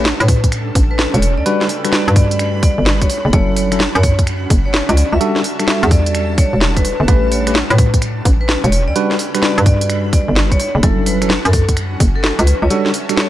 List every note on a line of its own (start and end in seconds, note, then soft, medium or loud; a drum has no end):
0.00 0.14 A1 loud
0.00 0.28 G3 medium
0.00 1.46 C#4 medium
0.00 2.13 A4 medium
0.00 1.45 G5 medium
0.00 0.35 A5 medium
0.05 snare loud
0.20 0.72 A2 loud
0.20 0.41 B4 loud
0.20 closed hi-hat soft
0.28 kick loud
0.28 open hi-hat loud
0.44 3.94 B5 medium
0.44 kick medium
0.44 closed hi-hat medium
0.52 finger snap soft
0.52 closed hi-hat medium
0.75 1.07 A1 medium
0.75 kick loud
0.75 open hi-hat loud
0.91 1.02 B4 medium
0.99 snare loud
1.14 1.39 E1 loud
1.14 1.25 C#5 medium
1.14 closed hi-hat medium
1.22 open hi-hat loud
1.38 1.43 E2 medium
1.38 1.58 D5 medium
1.45 1.65 G3 loud
1.45 3.10 D4 medium
1.45 1.65 D4 medium
1.45 1.65 F#4 medium
1.45 1.65 B4 loud
1.45 closed hi-hat medium
1.59 3.10 G3 medium
1.59 snare medium
1.69 open hi-hat loud
1.85 3.09 G3 medium
1.85 3.09 D4 medium
1.85 3.09 F#4 medium
1.85 3.09 B4 medium
1.85 finger snap soft
1.85 closed hi-hat medium
1.93 2.10 D5 medium
1.93 3.97 F#5 medium
1.93 snare loud
2.08 2.64 G2 loud
2.08 closed hi-hat soft
2.16 2.46 D5 loud
2.16 kick loud
2.16 open hi-hat loud
2.31 closed hi-hat medium
2.39 finger snap soft
2.39 closed hi-hat medium
2.63 2.74 D2 medium
2.63 2.85 D5 medium
2.63 kick loud
2.63 open hi-hat loud
2.78 3.06 G1 medium
2.86 snare loud
3.02 3.22 C#5 medium
3.02 kick medium
3.02 closed hi-hat medium
3.10 5.21 C#4 medium
3.10 open hi-hat loud
3.25 3.31 F#1 loud
3.25 5.20 F#4 medium
3.33 3.88 F#1 loud
3.33 3.68 F#3 medium
3.33 3.68 C#4 medium
3.33 3.68 E4 medium
3.33 3.68 A4 loud
3.33 3.50 C#5 loud
3.33 kick loud
3.33 closed hi-hat medium
3.56 3.78 C#5 medium
3.56 open hi-hat loud
3.72 3.79 F#3 medium
3.72 3.80 C#4 medium
3.72 3.80 E4 medium
3.72 3.80 A4 medium
3.72 finger snap soft
3.72 closed hi-hat medium
3.80 5.97 E5 medium
3.80 snare loud
3.95 4.47 F#2 loud
3.95 4.16 C#5 loud
3.95 closed hi-hat soft
4.03 7.75 A5 medium
4.03 kick loud
4.03 open hi-hat loud
4.19 kick medium
4.19 closed hi-hat medium
4.27 finger snap soft
4.27 closed hi-hat medium
4.50 4.82 F#1 medium
4.50 kick loud
4.50 open hi-hat loud
4.66 4.77 C#5 medium
4.74 snare loud
4.89 5.04 C#2 loud
4.89 5.00 D5 medium
4.89 closed hi-hat medium
4.97 open hi-hat loud
5.13 5.18 C#2 medium
5.13 5.33 E5 medium
5.20 5.40 G3 loud
5.20 7.08 D4 medium
5.20 5.40 D4 medium
5.20 5.40 F#4 medium
5.20 5.40 A4 loud
5.20 closed hi-hat medium
5.36 snare medium
5.43 7.81 G3 medium
5.43 open hi-hat loud
5.50 7.08 F#5 medium
5.59 7.06 G3 medium
5.59 7.06 D4 medium
5.59 7.06 F#4 medium
5.59 7.06 A4 medium
5.59 finger snap soft
5.59 closed hi-hat medium
5.68 5.85 E5 medium
5.68 snare loud
5.83 6.39 E2 loud
5.83 closed hi-hat soft
5.91 6.20 D5 medium
5.91 kick loud
5.91 open hi-hat loud
6.06 closed hi-hat medium
6.15 finger snap soft
6.15 closed hi-hat medium
6.38 6.49 B1 medium
6.38 6.60 C#5 loud
6.38 kick loud
6.38 open hi-hat loud
6.53 6.93 E1 medium
6.61 snare loud
6.77 6.97 B4 medium
6.77 kick medium
6.77 closed hi-hat medium
6.85 open hi-hat loud
7.00 7.06 G1 loud
7.08 7.63 A1 loud
7.08 7.43 A3 medium
7.08 8.96 C#4 medium
7.08 7.43 C#4 medium
7.08 7.43 G4 medium
7.08 7.43 B4 loud
7.08 7.25 B4 loud
7.08 kick loud
7.08 closed hi-hat medium
7.26 8.96 G5 medium
7.32 7.53 C#5 loud
7.32 open hi-hat loud
7.47 7.55 A3 medium
7.47 7.55 C#4 medium
7.47 7.55 G4 medium
7.47 7.55 B4 medium
7.47 finger snap soft
7.47 closed hi-hat medium
7.55 snare loud
7.64 9.61 A4 medium
7.70 8.22 A2 loud
7.70 7.91 B4 medium
7.70 closed hi-hat soft
7.78 kick loud
7.78 open hi-hat loud
7.94 11.27 B5 medium
7.94 kick medium
7.94 closed hi-hat medium
8.02 finger snap soft
8.02 closed hi-hat medium
8.25 8.57 A1 medium
8.25 kick loud
8.25 open hi-hat loud
8.41 8.52 B4 medium
8.49 snare loud
8.64 8.89 E1 loud
8.64 8.75 C#5 medium
8.64 closed hi-hat medium
8.72 open hi-hat loud
8.88 8.93 E2 medium
8.88 9.08 D5 medium
8.96 9.15 G3 loud
8.96 9.15 D4 loud
8.96 10.60 D4 medium
8.96 9.15 F#4 medium
8.96 9.15 B4 loud
8.96 closed hi-hat medium
9.11 10.60 G3 medium
9.11 snare medium
9.19 open hi-hat loud
9.35 10.59 G3 medium
9.35 10.59 D4 medium
9.35 10.59 F#4 medium
9.35 10.59 B4 loud
9.35 finger snap soft
9.35 closed hi-hat medium
9.42 9.59 D5 medium
9.42 snare loud
9.50 11.47 F#5 medium
9.58 10.14 G2 loud
9.58 closed hi-hat soft
9.66 9.96 D5 loud
9.66 kick loud
9.66 open hi-hat loud
9.81 closed hi-hat medium
9.90 finger snap soft
9.90 closed hi-hat medium
10.13 10.24 D2 medium
10.13 10.35 D5 medium
10.13 kick loud
10.13 open hi-hat loud
10.28 10.56 G1 medium
10.36 snare loud
10.52 10.72 C#5 loud
10.52 kick medium
10.52 closed hi-hat medium
10.60 12.71 C#4 medium
10.60 open hi-hat loud
10.75 10.81 F#1 loud
10.82 11.38 F#1 loud
10.82 11.18 F#3 medium
10.82 11.18 C#4 medium
10.82 11.18 E4 medium
10.82 12.71 F#4 medium
10.82 11.18 A4 loud
10.82 11.00 A4 loud
10.82 kick loud
10.82 closed hi-hat medium
11.06 11.28 B4 loud
11.06 open hi-hat loud
11.22 11.30 F#3 medium
11.22 11.30 C#4 medium
11.22 11.30 E4 medium
11.22 11.30 A4 medium
11.22 finger snap soft
11.22 closed hi-hat medium
11.30 snare loud
11.45 11.97 F#2 loud
11.45 11.66 A4 loud
11.45 closed hi-hat soft
11.53 13.29 E5 medium
11.53 13.29 A5 medium
11.53 kick loud
11.53 open hi-hat loud
11.69 kick medium
11.69 closed hi-hat medium
11.77 finger snap soft
11.77 closed hi-hat medium
12.00 12.32 F#1 medium
12.00 kick loud
12.00 open hi-hat loud
12.16 12.27 A4 medium
12.24 snare loud
12.39 12.54 C#2 loud
12.39 12.50 B4 medium
12.39 closed hi-hat medium
12.47 open hi-hat loud
12.62 12.68 C#2 medium
12.62 12.83 C#5 medium
12.70 12.90 G3 loud
12.70 13.29 D4 medium
12.70 12.90 D4 medium
12.70 12.90 F#4 medium
12.70 12.90 A4 loud
12.70 closed hi-hat medium
12.86 snare medium
12.94 13.29 F#5 medium
12.94 open hi-hat loud
13.09 13.29 G3 medium
13.09 13.29 D4 medium
13.09 13.29 F#4 medium
13.09 13.29 A4 medium
13.09 finger snap soft
13.09 closed hi-hat medium
13.17 13.29 C#5 medium
13.17 snare loud